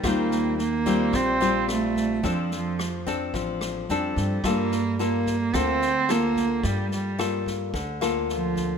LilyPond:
<<
  \new Staff \with { instrumentName = "Nylon-string guitar" } { \time 4/4 \key g \minor \tempo 4 = 109 << { <g c' f'>4 r8 <g c' f'>4 <g c' f'>4. | <c' d' a'>4 r8 <c' d' a'>4. <c' d' a'>4 | <bes f' a'>8 r8 <bes f' a'>8 r8 <bes f' a'>8 r8 <bes f' a'>4~ | <bes f' a'>4 <bes f' a'>4 r8 <bes f' a'>4. | } \\ { ees2 bes,2 | f2 f2 | g2 d2 | g2 d2 | } >> }
  \new Staff \with { instrumentName = "Cello" } { \time 4/4 \key g \minor bes4 bes4 c'4 a4 | f8 f4 r4. g4 | bes4 bes4 c'4 bes4 | g8 g4 r4. f4 | }
  \new Staff \with { instrumentName = "Upright bass" } { \clef bass \time 4/4 \key g \minor ees,2 bes,,2 | f,2 a,,4 f,8 g,8 | g,2 d,2 | g,2 d,2 | }
  \new DrumStaff \with { instrumentName = "Drums" } \drummode { \time 4/4 <bd ss sn>8 sn8 sn8 <bd sn>8 <bd ss sn>8 sn8 <ss sn>8 <bd sn>8 | <bd sn>8 sn8 <ss sn>8 <bd sn>8 <bd sn>8 <ss sn>8 sn8 <bd sn>8 | <bd ss sn>8 sn8 sn8 <bd sn>8 <bd ss sn>8 sn8 <ss sn>8 <bd sn>8 | <bd sn>8 sn8 <ss sn>8 <bd sn>8 <bd sn>8 <ss sn>8 sn8 <bd sn>8 | }
>>